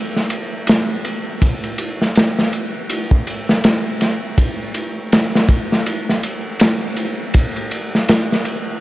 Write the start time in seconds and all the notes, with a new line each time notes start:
0.16 snare
0.30 ride
0.67 snare, ride
1.05 ride
1.42 kick, ride
1.64 ride
1.78 ride
2.02 snare
2.15 snare, ride
2.38 snare
2.53 ride
2.90 ride
3.11 kick
3.27 ride
3.49 snare
3.64 snare, ride
4.01 snare, ride
4.38 kick, ride
4.74 ride
5.12 snare, ride
5.35 snare
5.49 kick, ride
5.72 snare
5.86 ride
6.09 snare
6.23 ride
6.60 snare, ride
6.97 ride
7.34 kick, ride
7.56 ride
7.71 ride
7.95 snare
8.09 snare, ride
8.32 snare
8.45 ride